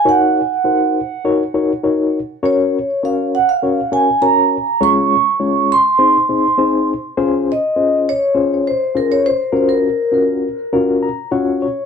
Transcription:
X:1
M:4/4
L:1/16
Q:1/4=101
K:Db
V:1 name="Vibraphone"
g6 z8 z2 | d4 f2 g f3 a2 b4 | d'6 c'8 z2 | z2 e4 d4 c2 B d c2- |
c B4 z8 z3 |]
V:2 name="Reed electric piano"
[EGBd]2 z2 [EGBc]2 z2 [EGBd]2 [EGBd]2 [EGBd]2 z2 | [DGBd]2 z2 [DGBd]2 z2 [DGBd]2 [DGBd]2 [DGBd]2 z2 | [A,DFAd]2 z2 [A,DFAd]2 z2 [CEAc]2 [CEAc]2 [CEAc]2 z2 | [DFAc]2 z2 [DFAc]2 z2 [DFAc]2 z2 [DFAc]2 z2 |
[DFGB]2 z2 [DFGB]2 z2 [DFGB]2 b2 [DFGdg]2 d2 |]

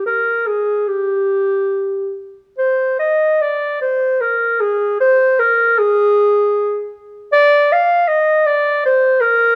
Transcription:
X:1
M:3/4
L:1/8
Q:1/4=76
K:Ablyd
V:1 name="Clarinet"
B A G3 z | c e d c B A | c B A3 z | d f e d c B |]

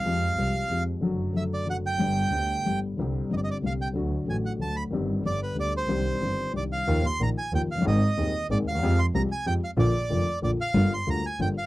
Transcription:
X:1
M:3/4
L:1/16
Q:1/4=185
K:Cm
V:1 name="Bandoneon"
f8- f2 z2 | z4 =e2 d2 ^f2 g2- | g8- g2 z2 | z4 e/2 d/2 e d2 f2 g2 |
z4 a2 ^f2 =a2 =b2 | z4 d2 =B2 d2 c2- | c8 d2 f2- | [K:Eb] f2 c'2 b2 a2 g2 f2 |
e8 d2 f2- | f2 c'2 b2 a2 g2 f2 | d8 d2 f2- | f2 c'2 b2 a2 g2 f2 |]
V:2 name="Grand piano" clef=bass
[F,,F,A,CG]4 [C,,C,F,A,CG]4 [F,,F,A,CG]4 | [^F,,D,^F,=A,^F]4 [F,,D,F,A,F]4 [F,,D,F,A,F]4 | [G,,,G,,D,G,=B,G]4 [D,,D,G,B,G]4 [G,,,G,,D,G,B,G]4 | [C,,C,D,G,CG]4 [G,,,G,,D,G,CG]4 [C,,C,D,G,CG]4 |
[D,,D,^F,=A,^F]4 [=A,,,=A,,D,F,A,F]4 [D,,D,F,A,F]4 | [G,,,G,,E,G,CG]4 [G,,,G,,D,G,=B,G]4 [D,,D,G,B,G]4 | [C,,C,E,CDG]4 [G,,,G,,E,CDG]4 [C,,C,E,CDG]4 | [K:Eb] [E,,E,F,B,F]2 z2 [B,,,B,,E,F,B,F]2 z2 [E,,E,F,B,F]2 z/2 F,,,/2 _G,,,/2 =G,,,/2 |
[A,,,A,,E,B,CA]2 z2 [E,,,E,,E,B,CA]2 z2 [A,,,A,,E,B,CA]2 z/2 D,,/2 E,,/2 _F,,/2 | [F,,F,A,CG]2 z2 [C,,C,F,A,CG]2 z2 [F,,F,A,CG]2 z2 | [B,,,B,,D,F,B,F]2 z2 [F,,,F,,D,F,B,F]2 z2 [B,,,B,,D,F,B,F]2 z2 | [G,,,G,,D,G,B,F]2 z2 [D,,D,G,B,F]2 z2 [G,,,G,,D,G,B,F]2 z2 |]
V:3 name="Double bass" clef=bass
F,,4 C,,4 F,,4 | ^F,,,4 F,,,4 F,,,4 | G,,,4 D,,4 G,,,4 | C,,4 G,,,4 C,,4 |
D,,4 =A,,,4 D,,4 | G,,,4 G,,,4 D,,4 | C,,4 G,,,4 C,,4 | [K:Eb] E,,2 z2 B,,,2 z2 E,,2 _G,,,2 |
A,,,2 z2 E,,2 z2 A,,,2 E,,2 | F,,2 z2 C,,2 z2 F,,2 z2 | B,,,2 z2 F,,,2 z2 B,,,2 z2 | G,,,2 z2 D,,2 z2 G,,,2 z2 |]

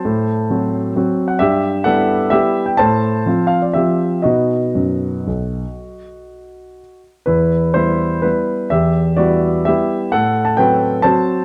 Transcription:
X:1
M:3/4
L:1/16
Q:1/4=126
K:Em
V:1 name="Grand piano"
[ca]8- [ca]3 f | [Ge]4 [Af]4 [Ge]3 g | [ca]6 =f d [Ge]4 | [F^d]12- |
[F^d]8- [Fd]2 z2 | [EB]4 [Ec]4 [EB]4 | [Ge]4 [Fd]4 [Ge]4 | [Af]3 a [Bg]4 [ca]4 |]
V:2 name="Grand piano"
A,,4 [F,CF]4 [F,CF]4 | G,,4 [G,B,E]4 [G,B,E]4 | A,,4 [=F,C=F]4 [F,CF]4 | [B,,B,^D]4 F,,4 B,,,4 |
z12 | E,,4 [G,B,]4 [G,B,]4 | E,,4 [G,B,E]4 [G,B,E]4 | A,,4 [F,CF]4 [F,CF]4 |]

